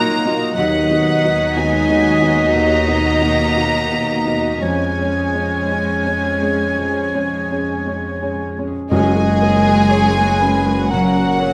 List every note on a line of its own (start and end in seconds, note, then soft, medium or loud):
0.00 0.59 A#2 medium
0.00 0.56 D#3 medium
0.00 0.25 F#3 medium
0.00 0.39 F#3 medium
0.00 2.76 F#3 medium
0.00 0.53 A#3 loud
0.00 0.57 A#3 loud
0.00 0.39 D#4 medium
0.00 0.53 D#4 loud
0.00 2.50 D#4 medium
0.00 0.26 F4 medium
0.00 0.61 F4 medium
0.00 0.26 D#5 medium
0.00 0.29 D#5 medium
0.00 0.32 D#5 medium
0.00 0.53 F5 medium
0.00 0.57 A#5 loud
0.00 1.79 D#6 medium
0.00 0.25 F#6 medium
0.09 0.33 F4 medium
0.09 3.99 F#4 medium
0.25 0.54 F#3 medium
0.25 0.55 F4 medium
0.25 0.55 D#5 medium
0.33 0.57 F#4 medium
0.33 1.05 D#5 medium
0.56 4.59 D#2 medium
0.56 0.89 D#2 medium
0.56 4.58 B2 medium
0.56 2.54 D#3 medium
0.56 1.53 F#3 medium
0.56 3.52 F#3 medium
0.56 4.58 D#4 medium
0.56 4.59 F#4 medium
0.56 4.58 D#5 medium
0.56 4.59 D#5 medium
0.56 1.54 F#5 loud
0.56 4.64 B6 medium
0.82 4.67 B2 medium
0.91 1.20 B3 medium
0.91 1.20 F#4 soft
0.91 1.20 D#5 medium
1.06 2.29 D#5 medium
1.24 1.53 B3 soft
1.24 1.53 F#4 soft
1.24 1.53 D#5 medium
1.56 2.55 G#3 medium
1.56 1.86 B3 soft
1.56 1.86 F#4 medium
1.56 1.86 D#5 medium
1.56 3.55 F#5 medium
1.56 2.55 G#5 loud
1.80 3.81 D#6 medium
1.89 2.18 B3 soft
1.89 2.19 F#4 soft
1.89 2.19 D#5 medium
2.22 2.51 B3 medium
2.22 2.51 F#4 soft
2.22 2.52 D#5 medium
2.30 3.03 D#5 medium
2.54 2.87 D#2 medium
2.54 4.67 D#3 medium
2.54 4.62 A#3 medium
2.54 4.62 A#5 loud
2.88 3.18 B2 medium
2.88 3.19 F#4 soft
2.88 3.19 D#5 soft
3.04 4.33 D#5 medium
3.22 3.52 B2 medium
3.22 3.53 F#4 medium
3.22 3.53 D#5 medium
3.56 3.87 B2 soft
3.56 4.62 A#3 medium
3.56 3.87 F#4 soft
3.56 3.87 D#5 medium
3.56 4.67 F#5 medium
3.82 4.67 D#6 medium
3.91 4.23 B2 soft
3.91 4.23 F#4 soft
3.91 4.23 D#5 soft
4.26 4.58 B2 soft
4.26 4.59 F#4 soft
4.26 4.59 D#5 soft
4.35 4.66 D#5 medium
4.62 4.97 F2 medium
4.62 8.67 F2 medium
4.62 6.78 F3 medium
4.62 8.35 G#3 medium
4.62 8.55 G#3 medium
4.62 8.67 G#3 medium
4.62 8.54 C#4 medium
4.62 8.67 C#4 medium
4.62 8.71 G#4 medium
4.62 8.54 C#5 medium
4.62 8.40 G#5 medium
4.62 8.59 G#6 medium
4.89 7.05 C#4 soft
4.99 5.31 G#3 soft
4.99 5.32 C#4 soft
4.99 5.32 C#5 soft
5.17 6.51 G#4 soft
5.35 5.67 G#3 soft
5.35 5.67 C#4 soft
5.35 5.68 C#5 soft
5.43 6.24 C#5 soft
5.71 6.03 G#3 soft
5.71 6.03 C#4 soft
5.71 6.04 C#5 soft
5.71 7.86 C#6 medium
5.98 8.13 G#5 soft
6.07 6.39 G#3 soft
6.07 6.39 C#4 soft
6.07 6.39 C#5 soft
6.25 7.59 C#5 medium
6.42 6.75 G#3 soft
6.42 6.75 C#4 soft
6.42 6.75 C#5 soft
6.52 7.32 G#4 soft
6.78 7.13 F2 soft
6.78 8.95 F3 medium
7.06 9.25 C#4 soft
7.15 7.47 G#3 soft
7.15 7.47 C#4 soft
7.15 7.47 C#5 medium
7.34 8.66 G#4 soft
7.51 7.83 G#3 soft
7.51 7.83 C#4 soft
7.51 7.83 C#5 medium
7.61 8.40 C#5 soft
7.86 8.18 G#3 soft
7.86 8.19 C#4 soft
7.86 8.19 C#5 soft
7.86 11.53 C#6 medium
8.14 8.96 G#5 medium
8.22 8.54 G#3 soft
8.22 8.54 C#4 soft
8.22 8.54 C#5 soft
8.41 9.92 C#5 soft
8.58 8.88 G#3 soft
8.58 8.89 C#4 soft
8.58 8.89 C#5 soft
8.67 8.96 G#4 medium
8.91 11.53 F#1 medium
8.91 10.37 F#2 loud
8.91 10.87 F#2 medium
8.91 11.53 F#2 medium
8.91 11.53 A#2 medium
8.91 9.14 F#3 medium
8.91 10.87 G#3 loud
8.91 9.14 C#4 medium
8.91 11.53 C#4 medium
8.91 10.87 G#4 loud
8.91 9.91 D#5 loud
8.91 10.87 G#5 loud
8.91 10.93 G#5 loud
9.16 9.41 A#3 medium
9.16 9.41 F#4 medium
9.26 10.24 C#4 medium
9.42 9.66 F#3 medium
9.42 10.21 A#3 medium
9.42 9.66 C#4 medium
9.60 11.53 F#3 medium
9.67 9.91 A#3 medium
9.67 9.91 F#4 medium
9.90 10.15 F#3 medium
9.90 10.15 C#4 medium
9.90 10.41 C#5 medium
9.90 10.71 C#5 medium
9.90 11.53 C#5 medium
10.17 10.42 A#3 medium
10.17 10.41 F#4 medium
10.25 11.24 C#4 medium
10.40 10.67 F#3 medium
10.40 11.21 C#4 medium
10.40 10.67 C#4 medium
10.40 10.89 B4 medium
10.67 10.92 A#3 medium
10.67 10.92 F#4 medium
10.90 11.53 C#3 medium
10.90 11.14 F#3 medium
10.90 11.53 F#3 medium
10.90 11.14 C#4 medium
10.90 11.53 F#4 medium
10.90 11.41 A#4 medium
10.90 11.53 F#5 medium
10.90 11.53 F#5 loud
11.16 11.41 A#3 medium
11.16 11.41 F#4 medium
11.25 11.53 C#4 medium
11.40 11.53 F#3 medium
11.40 11.53 A#3 medium
11.40 11.53 C#4 medium
11.40 11.53 C#5 medium